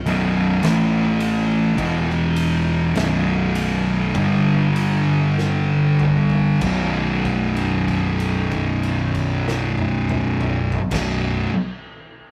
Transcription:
0.06 0.60 B0 medium
0.06 0.62 B1 loud
0.06 0.62 F#2 loud
0.06 0.63 B2 loud
0.06 ride medium
0.63 1.75 A1 loud
0.63 1.77 A2 medium
0.63 1.78 E3 loud
0.63 1.78 A3 loud
0.63 snare loud
0.63 ride loud
1.20 ride medium
1.78 2.92 E1 medium
1.78 2.94 E2 loud
1.78 2.94 B2 loud
1.78 2.94 E3 loud
1.78 kick loud
1.78 ride loud
2.10 snare soft
2.36 ride medium
2.95 4.11 B0 loud
2.95 4.13 B1 loud
2.95 4.14 F#2 loud
2.95 4.14 B2 loud
2.95 snare loud
2.95 ride loud
3.55 ride medium
4.15 6.58 G1 medium
4.15 6.60 G2 medium
4.15 6.60 D3 loud
4.15 6.61 G3 medium
4.15 kick loud
4.15 ride medium
4.76 ride medium
5.39 snare medium
5.99 mid tom loud
6.30 floor tom medium
6.61 10.73 B0 medium
6.61 10.77 B1 loud
6.61 10.78 F#2 loud
6.61 kick loud
6.61 crash medium
6.65 10.79 B2 loud
7.25 kick medium
7.25 crash soft
7.56 crash soft
7.88 kick medium
7.88 crash soft
8.20 crash medium
8.51 kick medium
8.51 crash medium
8.83 crash medium
9.14 kick medium
9.14 crash medium
9.48 snare medium
9.78 high tom medium
10.09 mid tom loud
10.41 mid tom loud
10.72 floor tom loud
10.91 11.45 B0 loud
10.91 11.49 B1 medium
10.91 11.50 F#2 loud
10.91 kick loud
10.91 snare loud
10.91 crash loud
10.95 11.51 B2 loud

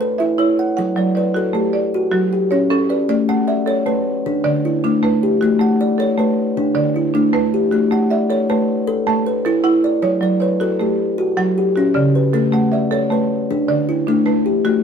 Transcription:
0.00 0.19 A3 medium
0.00 0.20 A4 medium
0.00 0.38 A4 medium
0.00 0.58 B4 medium
0.18 0.59 E4 medium
0.18 0.77 E5 medium
0.38 0.77 E4 medium
0.38 0.97 C#5 medium
0.59 0.97 F#5 medium
0.77 1.17 F#3 medium
0.77 1.16 F#5 medium
0.96 1.35 F#3 medium
0.96 1.55 D5 medium
1.15 1.75 B4 medium
1.15 1.72 D5 medium
1.34 1.93 F#4 medium
1.34 1.75 A4 medium
1.53 1.93 A3 medium
1.53 2.13 G4 medium
1.73 2.32 D5 medium
1.94 2.52 F#4 medium
2.11 2.51 F#3 medium
2.11 2.70 F#4 medium
2.33 2.90 G4 medium
2.51 2.90 C#4 medium
2.51 3.09 C#5 medium
2.70 3.09 C#4 medium
2.70 3.29 A4 medium
2.89 3.48 B4 medium
2.89 3.29 D5 medium
3.09 3.48 A3 medium
3.09 3.48 D5 medium
3.29 3.68 A3 medium
3.29 3.87 F#5 medium
3.48 4.06 D5 medium
3.48 4.06 E5 medium
3.66 4.25 A4 medium
3.66 4.06 C#5 medium
3.86 4.25 A3 medium
3.86 4.45 B4 medium
4.26 4.64 D3 medium
4.26 4.84 D4 medium
4.44 4.83 D3 medium
4.44 5.02 D5 medium
4.65 5.22 E4 medium
4.84 5.22 A3 medium
4.84 5.41 D4 medium
5.03 5.41 A3 medium
5.03 5.61 B4 medium
5.23 5.61 G4 medium
5.41 5.80 A3 medium
5.41 5.80 F#4 medium
5.59 5.98 A3 medium
5.59 6.19 F#5 medium
5.81 6.38 D5 medium
5.98 6.56 A4 medium
5.98 6.38 C#5 medium
6.18 6.56 A3 medium
6.18 6.76 B4 medium
6.57 6.95 D3 medium
6.57 7.15 D4 medium
6.75 7.14 D3 medium
6.75 7.33 D5 medium
6.96 7.53 E4 medium
7.14 7.53 A3 medium
7.14 7.72 D4 medium
7.33 7.72 A3 medium
7.33 7.91 B4 medium
7.54 7.92 G4 medium
7.71 8.11 A3 medium
7.71 8.10 F#4 medium
7.91 8.30 A3 medium
7.91 8.50 F#5 medium
8.10 8.69 D5 medium
8.10 8.68 E5 medium
8.30 8.88 A4 medium
8.30 8.69 C#5 medium
8.50 8.88 A3 medium
8.50 9.07 B4 medium
8.87 9.45 A4 medium
9.07 9.45 A3 medium
9.07 9.65 A5 medium
9.27 9.84 B4 medium
9.45 9.84 E4 medium
9.45 10.03 A4 medium
9.64 10.03 E4 medium
9.64 10.22 F#5 medium
9.84 10.22 D5 medium
10.02 10.41 F#3 medium
10.02 10.39 C#5 medium
10.21 10.60 F#3 medium
10.21 10.80 D5 medium
10.40 10.99 B4 medium
10.40 10.99 C#5 medium
10.60 11.18 F#4 medium
10.60 10.99 A4 medium
10.80 11.18 A3 medium
10.80 11.38 G4 medium
11.18 11.57 F#4 medium
11.37 11.76 F#3 medium
11.37 11.95 F#5 medium
11.58 12.15 G4 medium
11.76 12.15 C#4 medium
11.76 12.34 F#4 medium
11.94 12.34 C#3 medium
11.94 12.53 D5 medium
12.15 12.54 B4 medium
12.33 12.72 A3 medium
12.33 12.72 A4 medium
12.52 12.91 A3 medium
12.52 13.11 F#5 medium
12.72 13.31 D5 medium
12.72 13.30 E5 medium
12.91 13.49 A4 medium
12.91 13.31 C#5 medium
13.10 13.49 A3 medium
13.10 13.69 B4 medium
13.51 13.89 D3 medium
13.51 14.08 D4 medium
13.68 14.07 D3 medium
13.68 14.26 D5 medium
13.89 14.46 E4 medium
14.07 14.46 A3 medium
14.07 14.65 D4 medium
14.26 14.65 A3 medium
14.26 14.83 B4 medium
14.46 14.83 G4 medium
14.65 14.83 A3 medium
14.65 14.83 F#4 medium

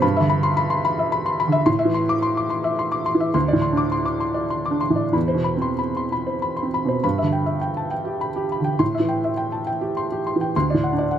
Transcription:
0.02 1.63 G2 medium
0.02 0.24 B5 medium
0.17 0.50 D3 medium
0.17 0.39 E5 medium
0.29 0.52 B5 medium
0.43 0.58 C6 medium
0.57 0.80 B5 medium
0.70 0.85 C6 medium
0.85 1.08 B5 medium
0.99 1.21 E5 medium
1.12 1.35 B5 medium
1.26 1.40 C6 medium
1.40 1.62 B5 medium
1.48 1.67 D3 medium
1.52 1.67 E5 medium
1.66 3.30 A2 medium
1.66 1.89 C6 medium
1.79 2.02 E5 medium
1.85 2.15 E3 medium
1.94 2.17 C6 medium
2.09 2.23 D6 medium
2.22 2.45 C6 medium
2.37 2.51 D6 medium
2.50 2.72 C6 medium
2.64 2.86 E5 medium
2.79 3.01 C6 medium
2.92 3.06 D6 medium
3.06 3.29 C6 medium
3.15 3.34 E3 medium
3.20 3.35 E5 medium
3.34 5.11 D2 medium
3.34 3.58 C6 medium
3.48 3.72 D5 medium
3.53 3.85 A2 medium
3.62 3.86 C6 medium
3.73 4.04 D4 soft
3.77 3.93 D6 medium
3.92 4.16 C6 medium
4.05 4.21 D6 soft
4.20 4.45 C6 medium
4.34 4.60 D5 soft
4.50 4.76 C6 medium
4.65 4.82 D6 soft
4.71 5.05 D4 soft
4.81 5.07 C6 medium
4.90 5.13 A2 soft
4.96 5.13 D5 soft
5.13 6.98 E2 medium
5.13 5.40 B5 soft
5.28 5.55 C5 soft
5.34 5.69 B2 soft
5.44 5.71 B5 soft
5.57 5.91 C4 soft
5.62 5.78 C6 medium
5.79 6.04 B5 soft
5.97 6.11 C6 soft
6.12 6.36 B5 soft
6.27 6.51 C5 soft
6.42 6.67 B5 medium
6.56 6.72 C6 soft
6.63 6.96 C4 soft
6.74 6.98 B5 medium
6.85 7.05 B2 soft
6.85 7.04 C5 soft
7.04 8.77 G2 medium
7.04 7.28 B5 medium
7.18 7.43 E5 soft
7.23 7.55 D3 soft
7.33 7.57 G5 soft
7.46 7.71 E5 soft
7.61 7.86 G5 medium
7.77 7.92 A5 soft
7.91 8.15 G5 soft
8.05 8.30 G4 soft
8.21 8.45 B5 soft
8.36 8.60 G4 soft
8.52 8.75 B5 soft
8.60 8.80 D3 soft
8.64 8.80 G5 soft
8.79 10.50 A2 medium
8.79 9.03 C6 medium
8.95 9.18 E5 soft
9.00 9.31 E3 soft
9.09 9.32 G5 soft
9.24 9.47 E5 soft
9.37 9.61 G5 medium
9.52 9.67 A5 soft
9.67 9.90 G5 medium
9.81 10.05 G4 soft
9.97 10.20 C6 medium
10.12 10.35 G4 soft
10.27 10.49 C6 soft
10.36 10.55 E3 soft
10.41 10.55 G5 soft
10.56 11.19 D2 medium
10.56 10.78 C6 medium
10.70 11.05 A2 soft
10.70 10.93 D5 soft
10.84 11.07 F#5 medium
10.93 11.19 D4 soft
10.98 11.19 D5 soft
11.11 11.19 F#5 soft

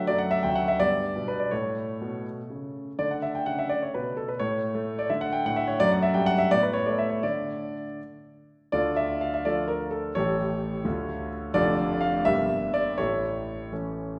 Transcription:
0.07 0.36 F#2 medium
0.07 0.75 A3 soft
0.07 0.19 D5 medium
0.18 0.31 F#5 medium
0.31 0.43 E5 medium
0.43 0.72 D2 medium
0.43 0.55 G5 medium
0.55 0.67 F#5 medium
0.68 0.79 E5 medium
0.80 1.08 G2 medium
0.80 1.48 B3 soft
0.80 1.27 D5 loud
1.16 1.44 B2 medium
1.28 1.39 B4 medium
1.40 1.51 D5 medium
1.51 1.91 A2 medium
1.51 2.95 A3 soft
1.51 2.24 C#5 medium
2.01 2.40 B2 soft
2.50 2.89 C#3 soft
2.99 3.37 D3 medium
2.99 4.36 A3 soft
2.99 3.10 D5 medium
3.11 3.23 F#5 medium
3.22 3.34 E5 medium
3.35 3.46 G5 medium
3.46 3.84 C#3 soft
3.46 3.58 F#5 medium
3.59 3.70 E5 medium
3.69 3.81 D5 medium
3.83 3.94 C#5 medium
3.94 4.31 B2 soft
3.94 4.17 B4 medium
4.17 4.28 A4 medium
4.28 4.40 B4 medium
4.39 4.68 A2 medium
4.39 4.73 A3 soft
4.39 4.97 C#5 medium
4.75 5.02 A3 medium
4.99 5.10 D5 medium
5.10 5.37 D3 medium
5.10 5.75 A3 soft
5.10 5.21 E5 medium
5.21 5.32 F#5 medium
5.32 5.44 G5 medium
5.46 5.73 A2 medium
5.46 5.56 F#5 medium
5.56 5.67 E5 medium
5.68 5.79 C#5 medium
5.80 6.08 F#2 medium
5.80 6.47 A3 soft
5.80 5.91 D5 loud
5.91 6.03 F#5 medium
6.03 6.14 E5 medium
6.14 6.43 G2 medium
6.14 6.26 G5 medium
6.26 6.38 F#5 loud
6.38 6.50 E5 medium
6.51 6.80 A2 medium
6.51 7.21 B3 soft
6.51 6.63 D5 loud
6.63 6.75 B4 medium
6.73 6.86 C#5 medium
6.86 7.16 A3 medium
6.86 6.99 D5 medium
6.98 7.11 E5 medium
7.10 7.23 C#5 medium
7.23 7.76 D3 soft
7.23 7.83 A3 soft
7.23 7.84 A4 soft
7.23 7.98 D5 medium
8.72 10.12 D2 soft
8.72 10.12 D3 medium
8.72 8.96 F4 medium
8.72 8.96 A4 medium
8.72 8.97 D5 medium
8.97 9.21 E5 medium
9.21 9.33 F5 medium
9.34 9.45 E5 medium
9.45 10.12 F3 soft
9.45 10.12 A3 soft
9.45 9.67 F4 medium
9.45 9.68 A4 medium
9.45 9.69 D5 medium
9.68 9.92 A#4 medium
9.91 10.15 A4 medium
10.15 10.83 A1 medium
10.15 10.83 A2 medium
10.15 10.81 E3 soft
10.15 10.82 A3 soft
10.15 11.28 G4 medium
10.15 11.28 A4 medium
10.15 11.31 C#5 medium
10.84 11.52 D2 medium
10.84 11.52 D3 medium
10.84 11.51 A3 soft
10.84 11.51 F4 soft
11.54 12.23 F1 medium
11.54 12.23 F2 medium
11.54 12.21 D3 medium
11.54 12.21 A3 medium
11.54 12.22 D4 medium
11.54 11.98 F4 medium
11.54 11.98 A4 medium
11.54 12.01 D5 loud
12.01 12.25 F5 medium
12.25 12.96 G1 medium
12.25 12.96 G2 medium
12.25 12.94 G3 soft
12.25 12.94 A#3 medium
12.25 12.95 D4 medium
12.25 12.73 E5 loud
12.74 12.98 D5 medium
12.98 14.19 A1 medium
12.98 14.19 A2 medium
12.98 13.68 E4 medium
12.98 13.68 A4 medium
12.98 13.71 C#5 medium
13.72 14.19 E3 soft
13.72 14.19 A3 soft
13.72 14.19 C#4 soft

